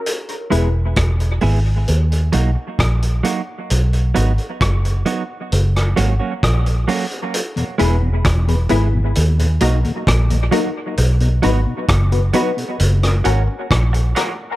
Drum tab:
HH |xxx-xxo-xxx-xxx-|xxxxxxx-xxx-xxox|xxx-xxx-xxxxxxx-|xxx-xxxxxxx-xxx-|
SD |----r-------r---|----r----r--r---|----r-------r---|----r----r--r-r-|
BD |----o-------o---|----o-------o---|----o-------o---|----o-------o---|